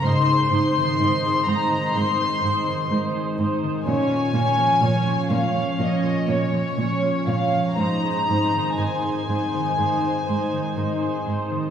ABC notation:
X:1
M:4/4
L:1/16
Q:1/4=62
K:Ab
V:1 name="Violin section"
c'2 c'4 b2 c'4 z4 | a6 f2 e2 d4 f2 | b4 a8- a2 z2 |]
V:2 name="Viola section"
[Ec]2 [Ec]2 [Ec]2 [Ec]2 [Ec]2 [Ec]2 [Ec]2 [Ec]2 | [Dd]2 [Dd]2 [Dd]2 [Dd]2 [Dd]2 [Dd]2 [Dd]2 [Dd]2 | [Ec]2 [Ec]2 [Ec]2 [Ec]2 [Ec]2 [Ec]2 [Ec]2 [Ec]2 |]
V:3 name="Harp"
A,, A C E, E A C E, C A C E, E A C E, | B,, F B, F, D F B, F, B, F B, F, D F B, F, | A,, A C E, E A C E, C A C E, E A C E, |]
V:4 name="Cello section" clef=bass
A,,2 A,,2 A,,2 A,,2 A,,2 A,,2 A,,2 A,,2 | B,,2 B,,2 B,,2 B,,2 B,,2 B,,2 B,,2 B,,2 | A,,2 A,,2 A,,2 A,,2 A,,2 A,,2 A,,2 A,,2 |]